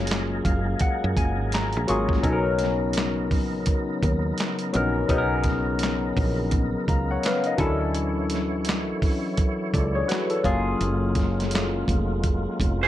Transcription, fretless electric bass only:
Already playing: F#1
0.46 F#1
1.04 F#2
1.17 F#1
1.40 G#1
1.77 A#1
1.90 G#1
2.24 B1
3.32 A#1
4.03 D#2
4.75 A#1
5.10 B1
6.17 A#1
6.88 C#2
7.59 D2
9.74 C#2
10.45 F#1
10.81 F#1
11.89 F1
12.60 F1

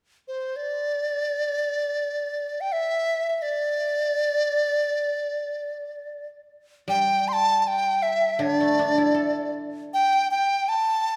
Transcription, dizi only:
0.28 C5
0.56 D5
2.60 G5
2.72 E5
3.29 E5
3.39 D5 E5
6.89 G5
7.28 C6
7.33 A5
7.62 A5
7.67 G5
8.02 E5
8.42 C#5
8.54 D5
9.94 G5
10.31 G5
10.68 A5

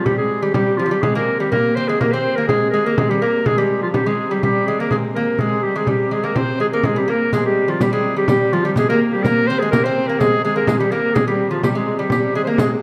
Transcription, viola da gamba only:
0.07 G3
0.20 G#3
0.56 G3
0.81 F3
0.86 F3
0.93 G3
1.05 G#3
1.42 G3
1.54 A#3
2.02 A#3
2.14 C4
2.38 A#3
2.49 G#3
2.73 G#3
2.85 A#3
2.98 G#3
3.09 G3
3.22 A#3
3.47 G#3
3.82 F3
3.94 G3
4.05 G#3
4.31 G3
4.43 G3
4.79 A#3
4.92 G#3
5.17 A#3
5.40 G#3
5.65 G3
5.77 G#3
5.89 G3
6.14 G#3
6.37 C4
6.62 G#3
6.74 A#3
6.85 G#3
6.99 G3
7.10 A#3
7.34 G#3
7.45 G3
7.81 G3
8.18 G3
8.30 G3
8.54 F3
8.67 G3
8.78 G#3
8.90 A#3
9.15 G3
9.27 A#3
9.50 C4
9.62 G#3
9.74 A#3
9.85 C4
10.21 G#3
10.46 G#3
10.70 G#3
10.82 G3
10.93 A#3
11.17 G#3
11.28 G3
11.51 F3
11.63 G3
11.75 G#3
12.00 G3
12.11 G3
12.47 A#3
12.58 G#3

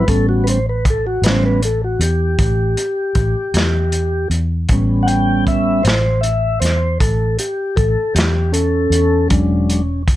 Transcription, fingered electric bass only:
0.08 A1
1.22 A1
1.99 E2
2.39 A1
3.15 A1
3.54 E2
4.30 E2
4.69 A1
5.85 A1
6.61 E2
7.00 A1
7.77 A1
8.15 E2
8.90 E2
9.30 E1

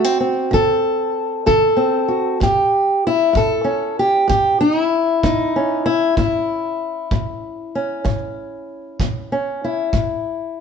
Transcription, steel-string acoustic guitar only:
Already playing: D3 F#4
0.04 C4
0.20 C4
0.51 D3 A4
1.46 D3 A4
1.77 C4
2.08 F#4
2.40 A2 G4
3.07 E4
3.33 A2 A4
3.64 C#4
3.99 G4
4.28 A2 G4
4.61 D#4
4.81 E4
5.24 A2 D#4
5.56 C#4
5.86 E4
6.17 A2 E4
7.12 A2
7.75 C#4
8.05 A2
9.01 A2
9.32 C#4
9.64 E4
9.94 A2

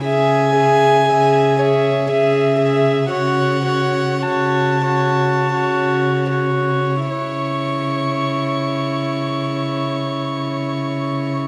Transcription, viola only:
0.04 G#4
0.55 G#4
1.08 G#4
1.60 G#4
2.09 G#4
2.59 G#4
3.09 F#4
3.64 F#4
4.22 F#4
4.86 F#4
5.54 F#4
6.31 F#4
7.10 E4

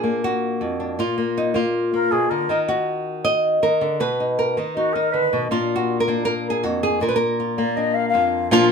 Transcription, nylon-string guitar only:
Already playing: A#2 D4 G#4
0.04 A#3
0.24 F#4
0.61 F2
0.80 D4
0.99 A#2 F4
1.18 A#3
1.37 D#4
1.54 A#3 F4
1.94 A#3
2.12 B2
2.31 D3
2.49 D#3 D#4 A#4 D#5
2.68 F#4
3.25 D#5
3.62 D#3 A#4
3.81 D3
4.00 B2 B4
4.20 D#4
4.39 A#4
4.57 D#3 D#4
4.77 D#4
4.95 D#4
5.14 D3
5.33 B2
5.51 A#2 A#3 D4 F4
5.76 F#4
6.00 A#4
6.08 A#3 D4
6.25 A#4
6.50 G#4
6.63 F2 F#4
6.83 G#4
7.01 A#2 A#4
7.09 B4
7.16 A#4
7.40 F4
7.58 A#3
7.77 D4
8.14 F2 F4
8.51 A#2 F3 A#3 D4 F4

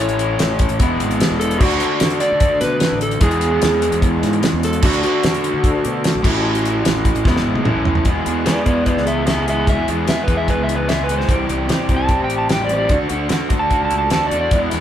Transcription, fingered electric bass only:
Already playing: A1
0.40 A1
0.70 A1
0.80 E1
1.01 G#1
1.31 E1
1.61 D2
2.02 D3
2.32 D3
2.61 B2
2.92 A1
3.21 E2
3.63 E2
3.93 E2
4.23 G#2
4.53 E2
4.84 D2
5.24 D3
5.54 D3
5.85 B2
6.15 B1
6.24 A1
6.86 A1
7.15 A1
7.25 E1
7.45 G#1
7.66 A1
7.76 B1
8.06 E2
8.17 E2
8.26 E2
8.47 E3
8.67 E2
8.97 C#2
9.77 E2
9.88 E2
10.08 E3
10.28 E2
10.58 C#2
11.29 C2
11.39 C2
11.49 C2
11.69 C3
11.89 C2
12.20 A1
12.90 D2
13.02 D2
13.11 D2
13.31 D3
13.50 D2
13.81 C#2
13.92 C#2
14.12 D2
14.31 E2
14.52 E2
14.63 E2
14.73 E2

